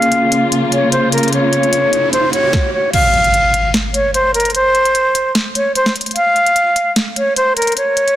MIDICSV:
0, 0, Header, 1, 7, 480
1, 0, Start_track
1, 0, Tempo, 402685
1, 1579, Time_signature, 4, 2, 24, 8
1, 9727, End_track
2, 0, Start_track
2, 0, Title_t, "Flute"
2, 0, Program_c, 0, 73
2, 0, Note_on_c, 0, 77, 102
2, 570, Note_off_c, 0, 77, 0
2, 869, Note_on_c, 0, 73, 81
2, 1068, Note_off_c, 0, 73, 0
2, 1098, Note_on_c, 0, 72, 85
2, 1302, Note_off_c, 0, 72, 0
2, 1337, Note_on_c, 0, 70, 79
2, 1541, Note_off_c, 0, 70, 0
2, 1584, Note_on_c, 0, 73, 85
2, 2494, Note_off_c, 0, 73, 0
2, 2535, Note_on_c, 0, 72, 87
2, 2740, Note_off_c, 0, 72, 0
2, 2776, Note_on_c, 0, 73, 84
2, 3229, Note_off_c, 0, 73, 0
2, 3258, Note_on_c, 0, 73, 80
2, 3462, Note_off_c, 0, 73, 0
2, 3486, Note_on_c, 0, 77, 105
2, 4405, Note_off_c, 0, 77, 0
2, 4694, Note_on_c, 0, 73, 83
2, 4899, Note_off_c, 0, 73, 0
2, 4936, Note_on_c, 0, 72, 83
2, 5141, Note_off_c, 0, 72, 0
2, 5175, Note_on_c, 0, 70, 84
2, 5380, Note_off_c, 0, 70, 0
2, 5419, Note_on_c, 0, 72, 109
2, 6331, Note_off_c, 0, 72, 0
2, 6622, Note_on_c, 0, 73, 86
2, 6824, Note_off_c, 0, 73, 0
2, 6858, Note_on_c, 0, 72, 89
2, 7062, Note_off_c, 0, 72, 0
2, 7334, Note_on_c, 0, 77, 105
2, 8249, Note_off_c, 0, 77, 0
2, 8547, Note_on_c, 0, 73, 83
2, 8747, Note_off_c, 0, 73, 0
2, 8779, Note_on_c, 0, 72, 87
2, 8982, Note_off_c, 0, 72, 0
2, 9015, Note_on_c, 0, 70, 80
2, 9220, Note_off_c, 0, 70, 0
2, 9263, Note_on_c, 0, 73, 86
2, 9727, Note_off_c, 0, 73, 0
2, 9727, End_track
3, 0, Start_track
3, 0, Title_t, "Synth keys"
3, 0, Program_c, 1, 88
3, 0, Control_c, 1, 64, 127
3, 0, Note_on_c, 1, 58, 63
3, 0, Note_on_c, 1, 61, 59
3, 0, Note_on_c, 1, 65, 61
3, 0, Note_on_c, 1, 68, 78
3, 3036, Control_c, 1, 64, 0
3, 3200, Note_off_c, 1, 58, 0
3, 3208, Note_off_c, 1, 61, 0
3, 3217, Note_off_c, 1, 65, 0
3, 3225, Note_off_c, 1, 68, 0
3, 9727, End_track
4, 0, Start_track
4, 0, Title_t, "String section"
4, 0, Program_c, 2, 48
4, 0, Note_on_c, 2, 49, 78
4, 0, Note_on_c, 2, 58, 70
4, 0, Note_on_c, 2, 65, 87
4, 2985, Note_off_c, 2, 58, 0
4, 2986, Note_off_c, 2, 49, 0
4, 2986, Note_off_c, 2, 65, 0
4, 9727, End_track
5, 0, Start_track
5, 0, Title_t, "Impact"
5, 0, Program_c, 3, 103
5, 3499, Note_on_c, 3, 60, 83
5, 5419, Note_off_c, 3, 60, 0
5, 9727, End_track
6, 0, Start_track
6, 0, Title_t, "Riser"
6, 0, Program_c, 4, 103
6, 0, Note_on_c, 4, 60, 83
6, 3019, Note_off_c, 4, 60, 0
6, 9727, End_track
7, 0, Start_track
7, 0, Title_t, "Drums"
7, 27, Note_on_c, 9, 42, 59
7, 139, Note_off_c, 9, 42, 0
7, 139, Note_on_c, 9, 42, 85
7, 259, Note_off_c, 9, 42, 0
7, 379, Note_on_c, 9, 42, 84
7, 499, Note_off_c, 9, 42, 0
7, 619, Note_on_c, 9, 42, 80
7, 739, Note_off_c, 9, 42, 0
7, 859, Note_on_c, 9, 42, 68
7, 979, Note_off_c, 9, 42, 0
7, 1099, Note_on_c, 9, 42, 80
7, 1218, Note_off_c, 9, 42, 0
7, 1339, Note_on_c, 9, 42, 80
7, 1403, Note_off_c, 9, 42, 0
7, 1403, Note_on_c, 9, 42, 70
7, 1467, Note_off_c, 9, 42, 0
7, 1467, Note_on_c, 9, 42, 55
7, 1524, Note_off_c, 9, 42, 0
7, 1524, Note_on_c, 9, 42, 44
7, 1580, Note_off_c, 9, 42, 0
7, 1580, Note_on_c, 9, 42, 69
7, 1699, Note_off_c, 9, 42, 0
7, 1820, Note_on_c, 9, 42, 56
7, 1939, Note_off_c, 9, 42, 0
7, 1947, Note_on_c, 9, 42, 32
7, 2059, Note_off_c, 9, 42, 0
7, 2059, Note_on_c, 9, 42, 86
7, 2178, Note_off_c, 9, 42, 0
7, 2299, Note_on_c, 9, 42, 87
7, 2418, Note_off_c, 9, 42, 0
7, 2538, Note_on_c, 9, 42, 78
7, 2657, Note_off_c, 9, 42, 0
7, 2778, Note_on_c, 9, 42, 73
7, 2897, Note_off_c, 9, 42, 0
7, 3018, Note_on_c, 9, 36, 105
7, 3018, Note_on_c, 9, 38, 87
7, 3137, Note_off_c, 9, 38, 0
7, 3138, Note_off_c, 9, 36, 0
7, 3498, Note_on_c, 9, 42, 74
7, 3498, Note_on_c, 9, 49, 101
7, 3617, Note_off_c, 9, 42, 0
7, 3617, Note_off_c, 9, 49, 0
7, 3739, Note_on_c, 9, 42, 35
7, 3858, Note_off_c, 9, 42, 0
7, 3866, Note_on_c, 9, 42, 59
7, 3979, Note_off_c, 9, 42, 0
7, 3979, Note_on_c, 9, 42, 88
7, 4098, Note_off_c, 9, 42, 0
7, 4218, Note_on_c, 9, 42, 89
7, 4338, Note_off_c, 9, 42, 0
7, 4459, Note_on_c, 9, 42, 83
7, 4460, Note_on_c, 9, 38, 108
7, 4578, Note_off_c, 9, 42, 0
7, 4579, Note_off_c, 9, 38, 0
7, 4699, Note_on_c, 9, 42, 75
7, 4818, Note_off_c, 9, 42, 0
7, 4939, Note_on_c, 9, 42, 80
7, 5058, Note_off_c, 9, 42, 0
7, 5179, Note_on_c, 9, 42, 82
7, 5243, Note_off_c, 9, 42, 0
7, 5243, Note_on_c, 9, 42, 69
7, 5307, Note_off_c, 9, 42, 0
7, 5307, Note_on_c, 9, 42, 59
7, 5363, Note_off_c, 9, 42, 0
7, 5363, Note_on_c, 9, 42, 47
7, 5419, Note_off_c, 9, 42, 0
7, 5419, Note_on_c, 9, 42, 75
7, 5538, Note_off_c, 9, 42, 0
7, 5659, Note_on_c, 9, 42, 37
7, 5778, Note_off_c, 9, 42, 0
7, 5786, Note_on_c, 9, 42, 60
7, 5899, Note_off_c, 9, 42, 0
7, 5899, Note_on_c, 9, 42, 88
7, 6018, Note_off_c, 9, 42, 0
7, 6139, Note_on_c, 9, 42, 89
7, 6258, Note_off_c, 9, 42, 0
7, 6378, Note_on_c, 9, 42, 83
7, 6379, Note_on_c, 9, 38, 109
7, 6497, Note_off_c, 9, 42, 0
7, 6498, Note_off_c, 9, 38, 0
7, 6619, Note_on_c, 9, 42, 73
7, 6738, Note_off_c, 9, 42, 0
7, 6859, Note_on_c, 9, 42, 82
7, 6979, Note_off_c, 9, 42, 0
7, 6987, Note_on_c, 9, 38, 99
7, 7099, Note_on_c, 9, 42, 80
7, 7106, Note_off_c, 9, 38, 0
7, 7163, Note_off_c, 9, 42, 0
7, 7163, Note_on_c, 9, 42, 71
7, 7227, Note_off_c, 9, 42, 0
7, 7227, Note_on_c, 9, 42, 60
7, 7283, Note_off_c, 9, 42, 0
7, 7283, Note_on_c, 9, 42, 47
7, 7339, Note_off_c, 9, 42, 0
7, 7339, Note_on_c, 9, 42, 75
7, 7458, Note_off_c, 9, 42, 0
7, 7579, Note_on_c, 9, 42, 35
7, 7699, Note_off_c, 9, 42, 0
7, 7706, Note_on_c, 9, 42, 60
7, 7818, Note_off_c, 9, 42, 0
7, 7818, Note_on_c, 9, 42, 89
7, 7937, Note_off_c, 9, 42, 0
7, 8058, Note_on_c, 9, 42, 88
7, 8177, Note_off_c, 9, 42, 0
7, 8298, Note_on_c, 9, 42, 85
7, 8299, Note_on_c, 9, 38, 113
7, 8417, Note_off_c, 9, 42, 0
7, 8418, Note_off_c, 9, 38, 0
7, 8539, Note_on_c, 9, 42, 74
7, 8658, Note_off_c, 9, 42, 0
7, 8778, Note_on_c, 9, 42, 84
7, 8898, Note_off_c, 9, 42, 0
7, 9019, Note_on_c, 9, 42, 84
7, 9082, Note_off_c, 9, 42, 0
7, 9082, Note_on_c, 9, 42, 70
7, 9147, Note_off_c, 9, 42, 0
7, 9147, Note_on_c, 9, 42, 57
7, 9202, Note_off_c, 9, 42, 0
7, 9202, Note_on_c, 9, 42, 47
7, 9258, Note_off_c, 9, 42, 0
7, 9258, Note_on_c, 9, 42, 74
7, 9377, Note_off_c, 9, 42, 0
7, 9498, Note_on_c, 9, 42, 59
7, 9618, Note_off_c, 9, 42, 0
7, 9626, Note_on_c, 9, 42, 34
7, 9727, Note_off_c, 9, 42, 0
7, 9727, End_track
0, 0, End_of_file